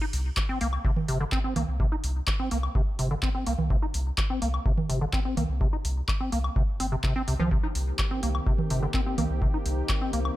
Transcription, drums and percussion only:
0.13 open hi-hat loud
0.37 kick loud
0.37 clap loud
0.37 high woodblock medium
0.61 open hi-hat medium
0.73 high woodblock medium
0.85 kick loud
0.97 low conga medium
1.08 open hi-hat loud
1.32 kick loud
1.32 clap loud
1.56 open hi-hat medium
1.56 low conga medium
1.80 kick loud
2.04 open hi-hat loud
2.27 kick loud
2.27 clap loud
2.27 high woodblock medium
2.51 open hi-hat medium
2.63 high woodblock medium
2.75 kick loud
2.99 open hi-hat loud
3.23 kick loud
3.23 clap loud
3.46 open hi-hat medium
3.58 low conga medium
3.70 kick loud
3.94 open hi-hat loud
4.18 kick loud
4.18 clap loud
4.18 high woodblock medium
4.42 open hi-hat medium
4.54 high woodblock medium
4.66 kick loud
4.78 low conga medium
4.90 open hi-hat loud
5.13 kick loud
5.13 clap loud
5.37 open hi-hat medium
5.37 low conga medium
5.61 kick loud
5.85 open hi-hat loud
6.08 kick loud
6.08 clap loud
6.08 high woodblock medium
6.32 open hi-hat medium
6.44 high woodblock medium
6.56 kick loud
6.80 open hi-hat loud
7.04 kick loud
7.04 clap loud
7.28 open hi-hat medium
7.40 low conga loud
7.51 kick loud
7.75 open hi-hat loud
7.99 kick loud
7.99 clap loud
7.99 high woodblock medium
8.23 open hi-hat medium
8.35 high woodblock medium
8.47 kick loud
8.59 low conga medium
8.70 open hi-hat loud
8.94 kick loud
8.94 clap loud
9.18 open hi-hat medium
9.18 low conga medium
9.42 kick loud
9.66 open hi-hat loud
9.89 kick loud
9.89 clap loud
9.89 high woodblock medium
10.13 open hi-hat medium
10.25 high woodblock medium

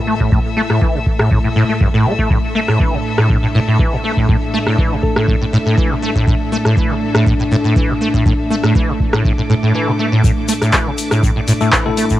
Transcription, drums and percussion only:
0.20 kick medium
0.32 kick loud
0.70 cross-stick medium
0.82 kick loud
1.06 kick medium
1.20 cross-stick medium
1.31 kick loud
1.81 kick loud
2.19 kick medium
2.30 kick loud
2.68 cross-stick medium
2.80 kick loud
3.18 cross-stick medium
3.30 kick loud
3.79 kick loud
4.17 kick medium
4.29 kick loud
4.67 cross-stick medium
4.78 kick loud
5.03 kick medium
5.16 cross-stick medium
5.28 kick loud
5.78 kick loud
6.15 kick medium
6.27 kick loud
6.65 cross-stick medium
6.77 kick loud
7.15 cross-stick medium
7.26 kick loud
7.76 kick loud
8.14 kick medium
8.26 kick loud
8.63 cross-stick medium
8.75 kick loud
9.00 kick medium
9.13 cross-stick medium
9.25 kick loud
10.24 kick loud
10.24 shaker soft
10.48 open hi-hat loud
10.48 shaker medium
10.62 cross-stick medium
10.62 shaker soft
10.73 kick loud
10.73 clap loud
10.73 shaker medium
10.98 open hi-hat loud
10.98 shaker medium
11.11 cross-stick medium
11.11 shaker soft
11.23 kick loud
11.23 shaker soft
11.48 open hi-hat loud
11.48 shaker medium
11.61 shaker soft
11.72 kick loud
11.72 clap loud
11.72 shaker soft
11.97 open hi-hat loud
11.97 shaker medium
12.10 kick medium
12.10 shaker soft

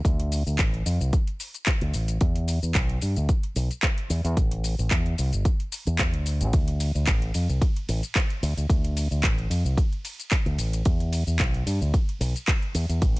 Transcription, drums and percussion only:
0.05 kick loud
0.05 closed hi-hat medium
0.05 shaker soft
0.20 closed hi-hat soft
0.32 open hi-hat loud
0.32 shaker medium
0.47 shaker soft
0.59 kick loud
0.59 clap loud
0.59 closed hi-hat medium
0.59 shaker soft
0.74 closed hi-hat soft
0.86 open hi-hat loud
0.86 shaker medium
1.01 shaker soft
1.13 kick loud
1.13 closed hi-hat medium
1.13 shaker soft
1.27 closed hi-hat soft
1.40 open hi-hat loud
1.40 shaker medium
1.54 closed hi-hat soft
1.54 shaker soft
1.66 kick loud
1.66 clap loud
1.66 closed hi-hat medium
1.66 shaker soft
1.81 closed hi-hat soft
1.94 open hi-hat medium
1.94 shaker medium
2.08 closed hi-hat medium
2.08 shaker soft
2.21 kick loud
2.21 closed hi-hat medium
2.21 shaker soft
2.36 closed hi-hat medium
2.48 open hi-hat loud
2.48 shaker medium
2.63 shaker soft
2.75 kick loud
2.75 clap loud
2.75 closed hi-hat medium
2.75 shaker soft
2.89 closed hi-hat soft
3.02 open hi-hat medium
3.02 shaker medium
3.16 shaker soft
3.29 kick loud
3.29 closed hi-hat medium
3.29 shaker soft
3.43 closed hi-hat soft
3.56 open hi-hat loud
3.56 shaker medium
3.71 closed hi-hat soft
3.71 shaker soft
3.83 kick loud
3.83 clap loud
3.83 closed hi-hat medium
3.83 shaker soft
3.98 closed hi-hat soft
4.10 open hi-hat medium
4.10 shaker medium
4.25 closed hi-hat medium
4.25 shaker soft
4.37 kick loud
4.37 closed hi-hat medium
4.37 shaker soft
4.51 closed hi-hat medium
4.64 open hi-hat loud
4.64 shaker medium
4.79 shaker soft
4.91 kick loud
4.91 clap loud
4.91 closed hi-hat medium
4.91 shaker soft
5.06 closed hi-hat soft
5.18 open hi-hat medium
5.18 shaker medium
5.33 closed hi-hat soft
5.33 shaker soft
5.45 kick loud
5.45 closed hi-hat medium
5.45 shaker soft
5.60 closed hi-hat soft
5.72 open hi-hat loud
5.72 shaker medium
5.87 closed hi-hat soft
5.87 shaker soft
5.99 kick loud
5.99 clap loud
5.99 closed hi-hat medium
5.99 shaker soft
6.14 closed hi-hat soft
6.26 open hi-hat medium
6.26 shaker medium
6.41 closed hi-hat medium
6.41 shaker soft
6.53 kick loud
6.53 closed hi-hat medium
6.53 ride medium
6.53 shaker soft
6.68 closed hi-hat medium
6.80 open hi-hat loud
6.80 ride medium
6.80 shaker medium
6.95 shaker soft
7.07 kick loud
7.07 clap loud
7.07 closed hi-hat medium
7.07 ride medium
7.07 shaker soft
7.22 closed hi-hat soft
7.34 open hi-hat loud
7.34 ride medium
7.34 shaker medium
7.49 shaker soft
7.62 kick loud
7.62 closed hi-hat medium
7.62 ride medium
7.62 shaker soft
7.76 closed hi-hat soft
7.89 open hi-hat loud
7.89 ride medium
7.89 shaker medium
8.03 closed hi-hat soft
8.03 shaker soft
8.15 kick loud
8.15 clap loud
8.15 closed hi-hat medium
8.15 ride medium
8.15 shaker soft
8.30 closed hi-hat soft
8.43 open hi-hat medium
8.43 ride medium
8.43 shaker medium
8.58 closed hi-hat medium
8.58 shaker soft
8.70 kick loud
8.70 closed hi-hat medium
8.70 ride medium
8.70 shaker soft
8.85 closed hi-hat medium
8.97 open hi-hat loud
8.97 ride medium
8.97 shaker medium
9.11 shaker soft
9.24 kick loud
9.24 clap loud
9.24 closed hi-hat medium
9.24 ride medium
9.24 shaker soft
9.38 closed hi-hat soft
9.51 open hi-hat loud
9.51 ride medium
9.51 shaker medium
9.66 shaker soft
9.78 kick loud
9.78 closed hi-hat medium
9.78 ride medium
9.78 shaker soft
9.92 closed hi-hat soft
10.05 open hi-hat loud
10.05 ride medium
10.05 shaker medium
10.19 closed hi-hat soft
10.19 shaker soft
10.31 kick loud
10.31 clap loud
10.31 closed hi-hat medium
10.31 ride medium
10.31 shaker soft
10.46 closed hi-hat soft
10.59 open hi-hat loud
10.59 ride medium
10.59 shaker medium
10.73 closed hi-hat medium
10.73 shaker soft
10.85 kick loud
10.85 closed hi-hat medium
10.85 ride medium
10.85 shaker soft
11.00 closed hi-hat soft
11.13 open hi-hat loud
11.13 ride medium
11.13 shaker medium
11.27 shaker soft
11.39 kick loud
11.39 clap loud
11.39 closed hi-hat medium
11.39 ride medium
11.39 shaker soft
11.54 closed hi-hat soft
11.67 open hi-hat loud
11.67 ride medium
11.67 shaker medium
11.82 shaker soft
11.94 kick loud
11.94 closed hi-hat medium
11.94 ride medium
11.94 shaker soft
12.09 closed hi-hat soft
12.21 open hi-hat loud
12.21 ride medium
12.21 shaker medium
12.36 closed hi-hat soft
12.36 shaker soft
12.48 kick loud
12.48 clap loud
12.48 closed hi-hat medium
12.48 ride medium
12.48 shaker soft
12.62 closed hi-hat soft
12.75 open hi-hat loud
12.75 ride medium
12.75 shaker medium
12.90 closed hi-hat medium
12.90 shaker soft
13.02 kick loud
13.02 closed hi-hat medium
13.02 ride medium
13.02 shaker soft
13.16 closed hi-hat soft

